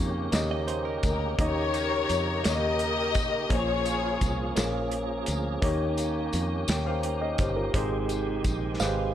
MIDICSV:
0, 0, Header, 1, 7, 480
1, 0, Start_track
1, 0, Tempo, 705882
1, 943, Time_signature, 6, 3, 24, 8
1, 6217, End_track
2, 0, Start_track
2, 0, Title_t, "Clean electric guitar"
2, 0, Program_c, 0, 27
2, 348, Note_on_c, 0, 75, 69
2, 456, Note_off_c, 0, 75, 0
2, 459, Note_on_c, 0, 72, 74
2, 575, Note_off_c, 0, 72, 0
2, 578, Note_on_c, 0, 70, 74
2, 1274, Note_off_c, 0, 70, 0
2, 5984, Note_on_c, 0, 77, 75
2, 6211, Note_off_c, 0, 77, 0
2, 6217, End_track
3, 0, Start_track
3, 0, Title_t, "String section"
3, 0, Program_c, 1, 48
3, 725, Note_on_c, 1, 70, 70
3, 938, Note_off_c, 1, 70, 0
3, 964, Note_on_c, 1, 70, 68
3, 966, Note_on_c, 1, 67, 69
3, 971, Note_on_c, 1, 73, 98
3, 1647, Note_off_c, 1, 70, 0
3, 1648, Note_off_c, 1, 67, 0
3, 1678, Note_off_c, 1, 73, 0
3, 1684, Note_on_c, 1, 70, 72
3, 1685, Note_on_c, 1, 67, 70
3, 1695, Note_on_c, 1, 75, 96
3, 2367, Note_off_c, 1, 70, 0
3, 2368, Note_off_c, 1, 67, 0
3, 2397, Note_on_c, 1, 68, 64
3, 2400, Note_off_c, 1, 75, 0
3, 2403, Note_on_c, 1, 65, 63
3, 2404, Note_on_c, 1, 73, 86
3, 2934, Note_off_c, 1, 73, 0
3, 3084, Note_off_c, 1, 68, 0
3, 3087, Note_off_c, 1, 65, 0
3, 6217, End_track
4, 0, Start_track
4, 0, Title_t, "Grand piano"
4, 0, Program_c, 2, 0
4, 0, Control_c, 2, 64, 127
4, 0, Note_on_c, 2, 51, 72
4, 0, Note_on_c, 2, 58, 87
4, 0, Note_on_c, 2, 61, 83
4, 0, Note_on_c, 2, 63, 80
4, 0, Note_on_c, 2, 67, 78
4, 0, Note_on_c, 2, 73, 101
4, 101, Note_off_c, 2, 58, 0
4, 102, Note_off_c, 2, 61, 0
4, 105, Note_off_c, 2, 63, 0
4, 106, Note_off_c, 2, 67, 0
4, 130, Note_off_c, 2, 73, 0
4, 195, Note_off_c, 2, 51, 0
4, 217, Note_on_c, 2, 58, 68
4, 222, Note_on_c, 2, 61, 66
4, 224, Note_on_c, 2, 63, 63
4, 229, Note_on_c, 2, 67, 61
4, 233, Note_on_c, 2, 75, 81
4, 823, Note_off_c, 2, 58, 0
4, 825, Note_off_c, 2, 61, 0
4, 826, Note_off_c, 2, 63, 0
4, 829, Note_off_c, 2, 67, 0
4, 831, Note_off_c, 2, 75, 0
4, 941, Note_on_c, 2, 58, 71
4, 944, Note_on_c, 2, 61, 68
4, 947, Note_on_c, 2, 51, 60
4, 949, Note_on_c, 2, 63, 65
4, 950, Note_on_c, 2, 67, 63
4, 955, Note_on_c, 2, 75, 76
4, 1545, Note_off_c, 2, 58, 0
4, 1546, Note_off_c, 2, 61, 0
4, 1549, Note_off_c, 2, 63, 0
4, 1550, Note_off_c, 2, 67, 0
4, 1552, Note_off_c, 2, 75, 0
4, 1639, Note_off_c, 2, 51, 0
4, 1659, Note_on_c, 2, 58, 59
4, 1661, Note_on_c, 2, 61, 55
4, 1668, Note_on_c, 2, 63, 55
4, 1671, Note_on_c, 2, 67, 51
4, 1675, Note_on_c, 2, 73, 70
4, 2264, Note_off_c, 2, 58, 0
4, 2265, Note_off_c, 2, 61, 0
4, 2269, Note_off_c, 2, 63, 0
4, 2270, Note_off_c, 2, 67, 0
4, 2272, Note_off_c, 2, 73, 0
4, 2376, Note_on_c, 2, 58, 75
4, 2380, Note_on_c, 2, 61, 62
4, 2382, Note_on_c, 2, 65, 67
4, 2384, Note_on_c, 2, 46, 59
4, 2390, Note_on_c, 2, 68, 66
4, 2392, Note_on_c, 2, 72, 64
4, 2393, Control_c, 2, 64, 0
4, 2433, Note_off_c, 2, 72, 0
4, 2434, Note_on_c, 2, 73, 74
4, 2519, Control_c, 2, 64, 127
4, 2983, Note_off_c, 2, 58, 0
4, 2985, Note_off_c, 2, 61, 0
4, 2986, Note_off_c, 2, 65, 0
4, 2990, Note_off_c, 2, 68, 0
4, 3012, Note_off_c, 2, 73, 0
4, 3077, Note_off_c, 2, 46, 0
4, 3097, Note_on_c, 2, 58, 75
4, 3104, Note_on_c, 2, 61, 65
4, 3106, Note_on_c, 2, 65, 69
4, 3110, Note_on_c, 2, 68, 63
4, 3113, Note_on_c, 2, 70, 74
4, 3703, Note_off_c, 2, 58, 0
4, 3707, Note_off_c, 2, 61, 0
4, 3708, Note_off_c, 2, 65, 0
4, 3709, Note_off_c, 2, 68, 0
4, 3711, Note_off_c, 2, 70, 0
4, 3820, Note_on_c, 2, 58, 91
4, 3820, Note_on_c, 2, 61, 82
4, 3827, Note_on_c, 2, 51, 72
4, 3827, Note_on_c, 2, 63, 77
4, 3831, Note_on_c, 2, 67, 75
4, 3831, Note_on_c, 2, 73, 96
4, 3833, Control_c, 2, 64, 0
4, 3947, Control_c, 2, 64, 127
4, 4424, Note_off_c, 2, 58, 0
4, 4424, Note_off_c, 2, 61, 0
4, 4427, Note_off_c, 2, 63, 0
4, 4430, Note_off_c, 2, 67, 0
4, 4430, Note_off_c, 2, 73, 0
4, 4518, Note_off_c, 2, 51, 0
4, 4550, Note_on_c, 2, 73, 49
4, 4550, Note_on_c, 2, 79, 59
4, 4661, Note_off_c, 2, 73, 0
4, 4661, Note_off_c, 2, 79, 0
4, 4666, Note_on_c, 2, 77, 71
4, 4672, Note_on_c, 2, 72, 55
4, 4893, Note_off_c, 2, 77, 0
4, 4896, Note_off_c, 2, 72, 0
4, 4905, Note_on_c, 2, 75, 67
4, 4907, Note_on_c, 2, 70, 55
4, 5018, Note_off_c, 2, 75, 0
4, 5019, Note_off_c, 2, 70, 0
4, 5031, Note_on_c, 2, 72, 63
4, 5035, Note_on_c, 2, 67, 54
4, 5141, Note_off_c, 2, 72, 0
4, 5142, Note_on_c, 2, 70, 63
4, 5143, Note_off_c, 2, 67, 0
4, 5147, Note_on_c, 2, 65, 51
4, 5262, Note_on_c, 2, 56, 88
4, 5264, Note_on_c, 2, 60, 80
4, 5270, Note_on_c, 2, 63, 83
4, 5271, Note_on_c, 2, 44, 68
4, 5273, Control_c, 2, 64, 0
4, 5273, Note_on_c, 2, 67, 79
4, 5276, Note_on_c, 2, 72, 94
4, 5370, Note_off_c, 2, 70, 0
4, 5373, Note_off_c, 2, 65, 0
4, 5392, Control_c, 2, 64, 127
4, 5864, Note_off_c, 2, 56, 0
4, 5865, Note_off_c, 2, 60, 0
4, 5868, Note_off_c, 2, 63, 0
4, 5869, Note_off_c, 2, 67, 0
4, 5871, Note_off_c, 2, 72, 0
4, 5959, Note_off_c, 2, 44, 0
4, 5980, Note_on_c, 2, 56, 74
4, 5983, Note_on_c, 2, 60, 64
4, 5987, Note_on_c, 2, 63, 65
4, 5992, Note_on_c, 2, 67, 65
4, 5998, Note_on_c, 2, 71, 66
4, 6034, Note_off_c, 2, 71, 0
4, 6039, Note_on_c, 2, 72, 76
4, 6217, Note_off_c, 2, 56, 0
4, 6217, Note_off_c, 2, 60, 0
4, 6217, Note_off_c, 2, 63, 0
4, 6217, Note_off_c, 2, 67, 0
4, 6217, Note_off_c, 2, 72, 0
4, 6217, End_track
5, 0, Start_track
5, 0, Title_t, "Tonewheel organ"
5, 0, Program_c, 3, 16
5, 0, Note_on_c, 3, 49, 66
5, 0, Note_on_c, 3, 58, 59
5, 0, Note_on_c, 3, 61, 60
5, 0, Note_on_c, 3, 67, 68
5, 927, Note_off_c, 3, 61, 0
5, 953, Note_on_c, 3, 63, 54
5, 2354, Note_off_c, 3, 67, 0
5, 2356, Note_off_c, 3, 49, 0
5, 2375, Note_off_c, 3, 63, 0
5, 2388, Note_on_c, 3, 61, 60
5, 2391, Note_on_c, 3, 53, 62
5, 2394, Note_on_c, 3, 68, 71
5, 3799, Note_off_c, 3, 58, 0
5, 3813, Note_off_c, 3, 53, 0
5, 3814, Note_off_c, 3, 68, 0
5, 3825, Note_on_c, 3, 51, 63
5, 3826, Note_on_c, 3, 58, 60
5, 3827, Note_on_c, 3, 67, 72
5, 5238, Note_off_c, 3, 61, 0
5, 5249, Note_off_c, 3, 51, 0
5, 5249, Note_off_c, 3, 58, 0
5, 5268, Note_on_c, 3, 48, 59
5, 5269, Note_on_c, 3, 51, 64
5, 5269, Note_on_c, 3, 56, 59
5, 6217, Note_off_c, 3, 48, 0
5, 6217, Note_off_c, 3, 51, 0
5, 6217, Note_off_c, 3, 56, 0
5, 6217, Note_off_c, 3, 67, 0
5, 6217, End_track
6, 0, Start_track
6, 0, Title_t, "Fingered electric bass"
6, 0, Program_c, 4, 33
6, 0, Note_on_c, 4, 41, 84
6, 203, Note_off_c, 4, 41, 0
6, 222, Note_on_c, 4, 39, 85
6, 675, Note_off_c, 4, 39, 0
6, 703, Note_on_c, 4, 38, 80
6, 924, Note_off_c, 4, 38, 0
6, 942, Note_on_c, 4, 39, 94
6, 1396, Note_off_c, 4, 39, 0
6, 1426, Note_on_c, 4, 41, 79
6, 1646, Note_off_c, 4, 41, 0
6, 1669, Note_on_c, 4, 39, 95
6, 2145, Note_off_c, 4, 39, 0
6, 2145, Note_on_c, 4, 33, 77
6, 2365, Note_off_c, 4, 33, 0
6, 2381, Note_on_c, 4, 34, 100
6, 2836, Note_off_c, 4, 34, 0
6, 2865, Note_on_c, 4, 36, 85
6, 3085, Note_off_c, 4, 36, 0
6, 3108, Note_on_c, 4, 34, 96
6, 3559, Note_off_c, 4, 34, 0
6, 3591, Note_on_c, 4, 38, 74
6, 3809, Note_off_c, 4, 38, 0
6, 3824, Note_on_c, 4, 39, 97
6, 4276, Note_off_c, 4, 39, 0
6, 4309, Note_on_c, 4, 41, 82
6, 4527, Note_off_c, 4, 41, 0
6, 4546, Note_on_c, 4, 39, 105
6, 4997, Note_off_c, 4, 39, 0
6, 5023, Note_on_c, 4, 31, 74
6, 5244, Note_off_c, 4, 31, 0
6, 5263, Note_on_c, 4, 32, 91
6, 5715, Note_off_c, 4, 32, 0
6, 5742, Note_on_c, 4, 34, 88
6, 5963, Note_off_c, 4, 34, 0
6, 5985, Note_on_c, 4, 32, 96
6, 6217, Note_off_c, 4, 32, 0
6, 6217, End_track
7, 0, Start_track
7, 0, Title_t, "Drums"
7, 220, Note_on_c, 9, 42, 85
7, 223, Note_on_c, 9, 54, 90
7, 227, Note_on_c, 9, 38, 105
7, 288, Note_off_c, 9, 42, 0
7, 291, Note_off_c, 9, 54, 0
7, 295, Note_off_c, 9, 38, 0
7, 461, Note_on_c, 9, 42, 46
7, 529, Note_off_c, 9, 42, 0
7, 700, Note_on_c, 9, 42, 74
7, 703, Note_on_c, 9, 36, 89
7, 705, Note_on_c, 9, 54, 48
7, 768, Note_off_c, 9, 42, 0
7, 771, Note_off_c, 9, 36, 0
7, 773, Note_off_c, 9, 54, 0
7, 943, Note_on_c, 9, 36, 110
7, 943, Note_on_c, 9, 42, 95
7, 1011, Note_off_c, 9, 36, 0
7, 1011, Note_off_c, 9, 42, 0
7, 1181, Note_on_c, 9, 54, 47
7, 1183, Note_on_c, 9, 42, 46
7, 1249, Note_off_c, 9, 54, 0
7, 1251, Note_off_c, 9, 42, 0
7, 1424, Note_on_c, 9, 42, 72
7, 1425, Note_on_c, 9, 54, 50
7, 1492, Note_off_c, 9, 42, 0
7, 1493, Note_off_c, 9, 54, 0
7, 1662, Note_on_c, 9, 42, 86
7, 1668, Note_on_c, 9, 54, 90
7, 1669, Note_on_c, 9, 38, 104
7, 1730, Note_off_c, 9, 42, 0
7, 1736, Note_off_c, 9, 54, 0
7, 1737, Note_off_c, 9, 38, 0
7, 1898, Note_on_c, 9, 42, 50
7, 1966, Note_off_c, 9, 42, 0
7, 2139, Note_on_c, 9, 42, 73
7, 2143, Note_on_c, 9, 36, 95
7, 2146, Note_on_c, 9, 54, 51
7, 2207, Note_off_c, 9, 42, 0
7, 2211, Note_off_c, 9, 36, 0
7, 2214, Note_off_c, 9, 54, 0
7, 2382, Note_on_c, 9, 42, 94
7, 2383, Note_on_c, 9, 36, 105
7, 2450, Note_off_c, 9, 42, 0
7, 2451, Note_off_c, 9, 36, 0
7, 2622, Note_on_c, 9, 42, 49
7, 2622, Note_on_c, 9, 54, 45
7, 2690, Note_off_c, 9, 42, 0
7, 2690, Note_off_c, 9, 54, 0
7, 2863, Note_on_c, 9, 54, 45
7, 2866, Note_on_c, 9, 36, 84
7, 2866, Note_on_c, 9, 42, 68
7, 2931, Note_off_c, 9, 54, 0
7, 2934, Note_off_c, 9, 36, 0
7, 2934, Note_off_c, 9, 42, 0
7, 3104, Note_on_c, 9, 42, 89
7, 3105, Note_on_c, 9, 54, 90
7, 3111, Note_on_c, 9, 38, 103
7, 3172, Note_off_c, 9, 42, 0
7, 3173, Note_off_c, 9, 54, 0
7, 3179, Note_off_c, 9, 38, 0
7, 3342, Note_on_c, 9, 42, 51
7, 3410, Note_off_c, 9, 42, 0
7, 3579, Note_on_c, 9, 42, 73
7, 3585, Note_on_c, 9, 54, 49
7, 3647, Note_off_c, 9, 42, 0
7, 3653, Note_off_c, 9, 54, 0
7, 3824, Note_on_c, 9, 36, 111
7, 3825, Note_on_c, 9, 42, 94
7, 3892, Note_off_c, 9, 36, 0
7, 3893, Note_off_c, 9, 42, 0
7, 4062, Note_on_c, 9, 54, 47
7, 4065, Note_on_c, 9, 42, 49
7, 4130, Note_off_c, 9, 54, 0
7, 4133, Note_off_c, 9, 42, 0
7, 4302, Note_on_c, 9, 54, 51
7, 4307, Note_on_c, 9, 42, 72
7, 4370, Note_off_c, 9, 54, 0
7, 4375, Note_off_c, 9, 42, 0
7, 4541, Note_on_c, 9, 54, 94
7, 4545, Note_on_c, 9, 42, 86
7, 4553, Note_on_c, 9, 38, 109
7, 4609, Note_off_c, 9, 54, 0
7, 4613, Note_off_c, 9, 42, 0
7, 4621, Note_off_c, 9, 38, 0
7, 4783, Note_on_c, 9, 42, 50
7, 4851, Note_off_c, 9, 42, 0
7, 5020, Note_on_c, 9, 42, 73
7, 5023, Note_on_c, 9, 54, 48
7, 5024, Note_on_c, 9, 36, 93
7, 5088, Note_off_c, 9, 42, 0
7, 5091, Note_off_c, 9, 54, 0
7, 5092, Note_off_c, 9, 36, 0
7, 5263, Note_on_c, 9, 36, 107
7, 5264, Note_on_c, 9, 42, 99
7, 5331, Note_off_c, 9, 36, 0
7, 5332, Note_off_c, 9, 42, 0
7, 5502, Note_on_c, 9, 42, 45
7, 5505, Note_on_c, 9, 54, 46
7, 5570, Note_off_c, 9, 42, 0
7, 5573, Note_off_c, 9, 54, 0
7, 5742, Note_on_c, 9, 42, 67
7, 5742, Note_on_c, 9, 54, 49
7, 5744, Note_on_c, 9, 36, 87
7, 5810, Note_off_c, 9, 42, 0
7, 5810, Note_off_c, 9, 54, 0
7, 5812, Note_off_c, 9, 36, 0
7, 5981, Note_on_c, 9, 54, 90
7, 5990, Note_on_c, 9, 38, 58
7, 6049, Note_off_c, 9, 54, 0
7, 6058, Note_off_c, 9, 38, 0
7, 6217, End_track
0, 0, End_of_file